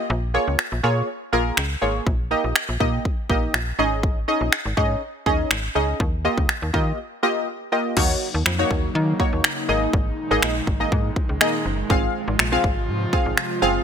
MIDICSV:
0, 0, Header, 1, 5, 480
1, 0, Start_track
1, 0, Tempo, 491803
1, 96, Time_signature, 4, 2, 24, 8
1, 13503, End_track
2, 0, Start_track
2, 0, Title_t, "Synth stab"
2, 0, Program_c, 0, 62
2, 332, Note_on_c, 0, 58, 83
2, 334, Note_on_c, 0, 65, 76
2, 336, Note_on_c, 0, 68, 76
2, 337, Note_on_c, 0, 73, 97
2, 576, Note_off_c, 0, 58, 0
2, 577, Note_off_c, 0, 65, 0
2, 578, Note_off_c, 0, 68, 0
2, 578, Note_off_c, 0, 73, 0
2, 813, Note_on_c, 0, 58, 84
2, 815, Note_on_c, 0, 65, 78
2, 817, Note_on_c, 0, 68, 79
2, 818, Note_on_c, 0, 73, 94
2, 1056, Note_off_c, 0, 58, 0
2, 1057, Note_off_c, 0, 65, 0
2, 1058, Note_off_c, 0, 68, 0
2, 1059, Note_off_c, 0, 73, 0
2, 1294, Note_on_c, 0, 58, 95
2, 1295, Note_on_c, 0, 65, 83
2, 1296, Note_on_c, 0, 68, 85
2, 1299, Note_on_c, 0, 70, 106
2, 1537, Note_off_c, 0, 58, 0
2, 1537, Note_off_c, 0, 65, 0
2, 1538, Note_off_c, 0, 68, 0
2, 1539, Note_off_c, 0, 70, 0
2, 1772, Note_on_c, 0, 58, 81
2, 1773, Note_on_c, 0, 65, 75
2, 1775, Note_on_c, 0, 68, 72
2, 1776, Note_on_c, 0, 73, 89
2, 2013, Note_off_c, 0, 58, 0
2, 2014, Note_off_c, 0, 65, 0
2, 2015, Note_off_c, 0, 68, 0
2, 2016, Note_off_c, 0, 73, 0
2, 2252, Note_on_c, 0, 58, 86
2, 2254, Note_on_c, 0, 63, 80
2, 2256, Note_on_c, 0, 67, 79
2, 2258, Note_on_c, 0, 75, 91
2, 2496, Note_off_c, 0, 58, 0
2, 2497, Note_off_c, 0, 63, 0
2, 2498, Note_off_c, 0, 67, 0
2, 2499, Note_off_c, 0, 75, 0
2, 2733, Note_on_c, 0, 58, 84
2, 2735, Note_on_c, 0, 63, 82
2, 2737, Note_on_c, 0, 67, 78
2, 2738, Note_on_c, 0, 75, 98
2, 2976, Note_off_c, 0, 58, 0
2, 2977, Note_off_c, 0, 63, 0
2, 2978, Note_off_c, 0, 67, 0
2, 2979, Note_off_c, 0, 75, 0
2, 3215, Note_on_c, 0, 58, 93
2, 3217, Note_on_c, 0, 63, 88
2, 3218, Note_on_c, 0, 67, 87
2, 3220, Note_on_c, 0, 75, 100
2, 3457, Note_off_c, 0, 58, 0
2, 3458, Note_off_c, 0, 63, 0
2, 3459, Note_off_c, 0, 67, 0
2, 3460, Note_off_c, 0, 75, 0
2, 3695, Note_on_c, 0, 61, 87
2, 3697, Note_on_c, 0, 63, 80
2, 3699, Note_on_c, 0, 68, 82
2, 3700, Note_on_c, 0, 75, 96
2, 4085, Note_off_c, 0, 61, 0
2, 4086, Note_off_c, 0, 63, 0
2, 4087, Note_off_c, 0, 68, 0
2, 4087, Note_off_c, 0, 75, 0
2, 4176, Note_on_c, 0, 61, 82
2, 4177, Note_on_c, 0, 63, 80
2, 4179, Note_on_c, 0, 68, 79
2, 4181, Note_on_c, 0, 75, 96
2, 4418, Note_off_c, 0, 61, 0
2, 4418, Note_off_c, 0, 63, 0
2, 4419, Note_off_c, 0, 68, 0
2, 4420, Note_off_c, 0, 75, 0
2, 4655, Note_on_c, 0, 61, 89
2, 4656, Note_on_c, 0, 63, 76
2, 4658, Note_on_c, 0, 68, 82
2, 4660, Note_on_c, 0, 75, 99
2, 4897, Note_off_c, 0, 61, 0
2, 4898, Note_off_c, 0, 63, 0
2, 4899, Note_off_c, 0, 68, 0
2, 4900, Note_off_c, 0, 75, 0
2, 5134, Note_on_c, 0, 61, 96
2, 5136, Note_on_c, 0, 63, 86
2, 5138, Note_on_c, 0, 68, 88
2, 5139, Note_on_c, 0, 75, 105
2, 5377, Note_off_c, 0, 61, 0
2, 5378, Note_off_c, 0, 63, 0
2, 5379, Note_off_c, 0, 68, 0
2, 5379, Note_off_c, 0, 75, 0
2, 5613, Note_on_c, 0, 61, 80
2, 5615, Note_on_c, 0, 63, 72
2, 5617, Note_on_c, 0, 68, 76
2, 5618, Note_on_c, 0, 75, 89
2, 5854, Note_off_c, 0, 61, 0
2, 5855, Note_off_c, 0, 63, 0
2, 5856, Note_off_c, 0, 68, 0
2, 5856, Note_off_c, 0, 75, 0
2, 6095, Note_on_c, 0, 58, 85
2, 6096, Note_on_c, 0, 65, 80
2, 6098, Note_on_c, 0, 67, 78
2, 6100, Note_on_c, 0, 75, 95
2, 6337, Note_off_c, 0, 58, 0
2, 6338, Note_off_c, 0, 65, 0
2, 6339, Note_off_c, 0, 67, 0
2, 6340, Note_off_c, 0, 75, 0
2, 6573, Note_on_c, 0, 58, 82
2, 6575, Note_on_c, 0, 65, 83
2, 6577, Note_on_c, 0, 67, 82
2, 6579, Note_on_c, 0, 75, 97
2, 6816, Note_off_c, 0, 58, 0
2, 6817, Note_off_c, 0, 65, 0
2, 6818, Note_off_c, 0, 67, 0
2, 6819, Note_off_c, 0, 75, 0
2, 7054, Note_on_c, 0, 58, 93
2, 7056, Note_on_c, 0, 65, 85
2, 7058, Note_on_c, 0, 67, 85
2, 7058, Note_on_c, 0, 75, 103
2, 7297, Note_off_c, 0, 58, 0
2, 7298, Note_off_c, 0, 65, 0
2, 7299, Note_off_c, 0, 67, 0
2, 7299, Note_off_c, 0, 75, 0
2, 7534, Note_on_c, 0, 58, 78
2, 7535, Note_on_c, 0, 65, 76
2, 7538, Note_on_c, 0, 67, 76
2, 7539, Note_on_c, 0, 75, 85
2, 7764, Note_off_c, 0, 58, 0
2, 7775, Note_off_c, 0, 65, 0
2, 7776, Note_on_c, 0, 58, 91
2, 7777, Note_off_c, 0, 67, 0
2, 7777, Note_off_c, 0, 75, 0
2, 7777, Note_on_c, 0, 63, 85
2, 7778, Note_on_c, 0, 66, 83
2, 7780, Note_on_c, 0, 73, 105
2, 8082, Note_off_c, 0, 58, 0
2, 8083, Note_off_c, 0, 63, 0
2, 8083, Note_off_c, 0, 66, 0
2, 8084, Note_off_c, 0, 73, 0
2, 8383, Note_on_c, 0, 58, 90
2, 8385, Note_on_c, 0, 63, 84
2, 8386, Note_on_c, 0, 66, 84
2, 8388, Note_on_c, 0, 73, 102
2, 8681, Note_off_c, 0, 58, 0
2, 8683, Note_off_c, 0, 63, 0
2, 8683, Note_off_c, 0, 66, 0
2, 8684, Note_off_c, 0, 73, 0
2, 8974, Note_on_c, 0, 58, 85
2, 8976, Note_on_c, 0, 63, 74
2, 8977, Note_on_c, 0, 66, 76
2, 8979, Note_on_c, 0, 73, 94
2, 9217, Note_off_c, 0, 58, 0
2, 9218, Note_off_c, 0, 63, 0
2, 9218, Note_off_c, 0, 66, 0
2, 9219, Note_off_c, 0, 73, 0
2, 9453, Note_on_c, 0, 58, 87
2, 9455, Note_on_c, 0, 63, 85
2, 9456, Note_on_c, 0, 68, 81
2, 9458, Note_on_c, 0, 75, 96
2, 9934, Note_off_c, 0, 58, 0
2, 9935, Note_off_c, 0, 63, 0
2, 9936, Note_off_c, 0, 68, 0
2, 9936, Note_off_c, 0, 75, 0
2, 10060, Note_on_c, 0, 58, 93
2, 10063, Note_on_c, 0, 63, 84
2, 10064, Note_on_c, 0, 68, 86
2, 10066, Note_on_c, 0, 75, 97
2, 10303, Note_off_c, 0, 58, 0
2, 10304, Note_off_c, 0, 63, 0
2, 10305, Note_off_c, 0, 68, 0
2, 10306, Note_off_c, 0, 75, 0
2, 10541, Note_on_c, 0, 58, 82
2, 10543, Note_on_c, 0, 63, 78
2, 10544, Note_on_c, 0, 68, 74
2, 10546, Note_on_c, 0, 75, 92
2, 10840, Note_off_c, 0, 58, 0
2, 10841, Note_off_c, 0, 63, 0
2, 10842, Note_off_c, 0, 68, 0
2, 10843, Note_off_c, 0, 75, 0
2, 11133, Note_on_c, 0, 58, 86
2, 11134, Note_on_c, 0, 63, 79
2, 11136, Note_on_c, 0, 68, 78
2, 11138, Note_on_c, 0, 75, 98
2, 11376, Note_off_c, 0, 58, 0
2, 11377, Note_off_c, 0, 63, 0
2, 11378, Note_off_c, 0, 68, 0
2, 11379, Note_off_c, 0, 75, 0
2, 11612, Note_on_c, 0, 60, 96
2, 11613, Note_on_c, 0, 65, 84
2, 11614, Note_on_c, 0, 68, 86
2, 11616, Note_on_c, 0, 77, 104
2, 11920, Note_off_c, 0, 60, 0
2, 11920, Note_off_c, 0, 65, 0
2, 11921, Note_off_c, 0, 68, 0
2, 11922, Note_off_c, 0, 77, 0
2, 12220, Note_on_c, 0, 60, 92
2, 12222, Note_on_c, 0, 65, 86
2, 12224, Note_on_c, 0, 68, 84
2, 12226, Note_on_c, 0, 77, 100
2, 12520, Note_off_c, 0, 60, 0
2, 12521, Note_off_c, 0, 65, 0
2, 12522, Note_off_c, 0, 68, 0
2, 12523, Note_off_c, 0, 77, 0
2, 12813, Note_on_c, 0, 60, 84
2, 12814, Note_on_c, 0, 65, 76
2, 12816, Note_on_c, 0, 68, 78
2, 12818, Note_on_c, 0, 77, 94
2, 13056, Note_off_c, 0, 60, 0
2, 13057, Note_off_c, 0, 65, 0
2, 13058, Note_off_c, 0, 68, 0
2, 13059, Note_off_c, 0, 77, 0
2, 13292, Note_on_c, 0, 60, 91
2, 13293, Note_on_c, 0, 65, 87
2, 13294, Note_on_c, 0, 68, 86
2, 13297, Note_on_c, 0, 77, 109
2, 13503, Note_off_c, 0, 60, 0
2, 13503, Note_off_c, 0, 65, 0
2, 13503, Note_off_c, 0, 68, 0
2, 13503, Note_off_c, 0, 77, 0
2, 13503, End_track
3, 0, Start_track
3, 0, Title_t, "Analog synth pad"
3, 0, Program_c, 1, 89
3, 7772, Note_on_c, 1, 58, 78
3, 7773, Note_on_c, 1, 49, 80
3, 7773, Note_on_c, 1, 54, 75
3, 7773, Note_on_c, 1, 63, 92
3, 9437, Note_off_c, 1, 49, 0
3, 9437, Note_off_c, 1, 54, 0
3, 9437, Note_off_c, 1, 58, 0
3, 9454, Note_on_c, 1, 46, 84
3, 9454, Note_on_c, 1, 51, 73
3, 9455, Note_on_c, 1, 56, 71
3, 11576, Note_off_c, 1, 63, 0
3, 11593, Note_off_c, 1, 46, 0
3, 11593, Note_off_c, 1, 51, 0
3, 11613, Note_on_c, 1, 53, 76
3, 11614, Note_on_c, 1, 65, 95
3, 11615, Note_on_c, 1, 48, 83
3, 13503, Note_off_c, 1, 48, 0
3, 13503, Note_off_c, 1, 53, 0
3, 13503, Note_off_c, 1, 56, 0
3, 13503, Note_off_c, 1, 65, 0
3, 13503, End_track
4, 0, Start_track
4, 0, Title_t, "FM bass"
4, 0, Program_c, 2, 39
4, 96, Note_on_c, 2, 34, 117
4, 371, Note_off_c, 2, 34, 0
4, 463, Note_on_c, 2, 37, 90
4, 548, Note_off_c, 2, 37, 0
4, 703, Note_on_c, 2, 34, 93
4, 788, Note_off_c, 2, 34, 0
4, 816, Note_on_c, 2, 46, 98
4, 996, Note_off_c, 2, 46, 0
4, 1297, Note_on_c, 2, 34, 93
4, 1476, Note_off_c, 2, 34, 0
4, 1537, Note_on_c, 2, 37, 96
4, 1716, Note_off_c, 2, 37, 0
4, 1777, Note_on_c, 2, 32, 86
4, 1956, Note_off_c, 2, 32, 0
4, 2016, Note_on_c, 2, 34, 108
4, 2291, Note_off_c, 2, 34, 0
4, 2384, Note_on_c, 2, 34, 92
4, 2468, Note_off_c, 2, 34, 0
4, 2623, Note_on_c, 2, 34, 98
4, 2707, Note_off_c, 2, 34, 0
4, 2738, Note_on_c, 2, 46, 99
4, 2917, Note_off_c, 2, 46, 0
4, 3217, Note_on_c, 2, 34, 94
4, 3396, Note_off_c, 2, 34, 0
4, 3454, Note_on_c, 2, 34, 90
4, 3634, Note_off_c, 2, 34, 0
4, 3696, Note_on_c, 2, 32, 96
4, 4151, Note_off_c, 2, 32, 0
4, 4302, Note_on_c, 2, 34, 92
4, 4387, Note_off_c, 2, 34, 0
4, 4543, Note_on_c, 2, 32, 99
4, 4627, Note_off_c, 2, 32, 0
4, 4659, Note_on_c, 2, 44, 108
4, 4837, Note_off_c, 2, 44, 0
4, 5136, Note_on_c, 2, 39, 92
4, 5316, Note_off_c, 2, 39, 0
4, 5377, Note_on_c, 2, 32, 95
4, 5556, Note_off_c, 2, 32, 0
4, 5616, Note_on_c, 2, 37, 93
4, 5796, Note_off_c, 2, 37, 0
4, 5856, Note_on_c, 2, 39, 119
4, 6131, Note_off_c, 2, 39, 0
4, 6222, Note_on_c, 2, 37, 97
4, 6307, Note_off_c, 2, 37, 0
4, 6464, Note_on_c, 2, 39, 99
4, 6548, Note_off_c, 2, 39, 0
4, 6577, Note_on_c, 2, 51, 97
4, 6757, Note_off_c, 2, 51, 0
4, 7777, Note_on_c, 2, 39, 113
4, 7956, Note_off_c, 2, 39, 0
4, 8143, Note_on_c, 2, 39, 100
4, 8227, Note_off_c, 2, 39, 0
4, 8256, Note_on_c, 2, 41, 97
4, 8436, Note_off_c, 2, 41, 0
4, 8498, Note_on_c, 2, 39, 91
4, 8677, Note_off_c, 2, 39, 0
4, 8736, Note_on_c, 2, 51, 109
4, 8916, Note_off_c, 2, 51, 0
4, 9103, Note_on_c, 2, 39, 90
4, 9187, Note_off_c, 2, 39, 0
4, 9456, Note_on_c, 2, 32, 95
4, 9635, Note_off_c, 2, 32, 0
4, 9696, Note_on_c, 2, 32, 112
4, 9876, Note_off_c, 2, 32, 0
4, 10061, Note_on_c, 2, 32, 101
4, 10146, Note_off_c, 2, 32, 0
4, 10174, Note_on_c, 2, 34, 90
4, 10355, Note_off_c, 2, 34, 0
4, 10416, Note_on_c, 2, 32, 97
4, 10596, Note_off_c, 2, 32, 0
4, 10658, Note_on_c, 2, 44, 106
4, 10837, Note_off_c, 2, 44, 0
4, 11021, Note_on_c, 2, 37, 92
4, 11106, Note_off_c, 2, 37, 0
4, 11374, Note_on_c, 2, 30, 89
4, 11554, Note_off_c, 2, 30, 0
4, 11615, Note_on_c, 2, 32, 118
4, 11795, Note_off_c, 2, 32, 0
4, 11982, Note_on_c, 2, 32, 106
4, 12066, Note_off_c, 2, 32, 0
4, 12094, Note_on_c, 2, 34, 92
4, 12274, Note_off_c, 2, 34, 0
4, 12337, Note_on_c, 2, 32, 89
4, 12572, Note_on_c, 2, 44, 110
4, 12587, Note_off_c, 2, 32, 0
4, 12753, Note_off_c, 2, 44, 0
4, 12941, Note_on_c, 2, 32, 97
4, 13026, Note_off_c, 2, 32, 0
4, 13294, Note_on_c, 2, 30, 78
4, 13475, Note_off_c, 2, 30, 0
4, 13503, End_track
5, 0, Start_track
5, 0, Title_t, "Drums"
5, 575, Note_on_c, 9, 26, 112
5, 672, Note_off_c, 9, 26, 0
5, 1535, Note_on_c, 9, 26, 113
5, 1633, Note_off_c, 9, 26, 0
5, 2016, Note_on_c, 9, 36, 119
5, 2114, Note_off_c, 9, 36, 0
5, 2494, Note_on_c, 9, 26, 113
5, 2592, Note_off_c, 9, 26, 0
5, 2738, Note_on_c, 9, 36, 83
5, 2835, Note_off_c, 9, 36, 0
5, 2979, Note_on_c, 9, 36, 95
5, 3077, Note_off_c, 9, 36, 0
5, 3217, Note_on_c, 9, 36, 92
5, 3314, Note_off_c, 9, 36, 0
5, 3457, Note_on_c, 9, 26, 115
5, 3554, Note_off_c, 9, 26, 0
5, 3937, Note_on_c, 9, 36, 113
5, 4035, Note_off_c, 9, 36, 0
5, 4417, Note_on_c, 9, 26, 117
5, 4514, Note_off_c, 9, 26, 0
5, 4658, Note_on_c, 9, 36, 88
5, 4756, Note_off_c, 9, 36, 0
5, 5136, Note_on_c, 9, 36, 89
5, 5234, Note_off_c, 9, 36, 0
5, 5375, Note_on_c, 9, 26, 114
5, 5472, Note_off_c, 9, 26, 0
5, 5857, Note_on_c, 9, 36, 115
5, 5954, Note_off_c, 9, 36, 0
5, 6223, Note_on_c, 9, 36, 89
5, 6320, Note_off_c, 9, 36, 0
5, 6335, Note_on_c, 9, 26, 112
5, 6433, Note_off_c, 9, 26, 0
5, 6578, Note_on_c, 9, 36, 87
5, 6675, Note_off_c, 9, 36, 0
5, 7775, Note_on_c, 9, 49, 96
5, 7777, Note_on_c, 9, 36, 114
5, 7873, Note_off_c, 9, 49, 0
5, 7874, Note_off_c, 9, 36, 0
5, 8255, Note_on_c, 9, 26, 112
5, 8353, Note_off_c, 9, 26, 0
5, 8498, Note_on_c, 9, 36, 85
5, 8595, Note_off_c, 9, 36, 0
5, 8976, Note_on_c, 9, 36, 94
5, 9073, Note_off_c, 9, 36, 0
5, 9215, Note_on_c, 9, 26, 116
5, 9313, Note_off_c, 9, 26, 0
5, 9696, Note_on_c, 9, 36, 118
5, 9794, Note_off_c, 9, 36, 0
5, 10175, Note_on_c, 9, 26, 115
5, 10272, Note_off_c, 9, 26, 0
5, 10417, Note_on_c, 9, 36, 86
5, 10514, Note_off_c, 9, 36, 0
5, 10658, Note_on_c, 9, 36, 100
5, 10756, Note_off_c, 9, 36, 0
5, 10895, Note_on_c, 9, 36, 90
5, 10993, Note_off_c, 9, 36, 0
5, 11135, Note_on_c, 9, 26, 117
5, 11232, Note_off_c, 9, 26, 0
5, 11615, Note_on_c, 9, 36, 121
5, 11713, Note_off_c, 9, 36, 0
5, 12095, Note_on_c, 9, 26, 119
5, 12193, Note_off_c, 9, 26, 0
5, 12337, Note_on_c, 9, 36, 87
5, 12434, Note_off_c, 9, 36, 0
5, 12815, Note_on_c, 9, 36, 98
5, 12912, Note_off_c, 9, 36, 0
5, 13054, Note_on_c, 9, 26, 122
5, 13152, Note_off_c, 9, 26, 0
5, 13503, End_track
0, 0, End_of_file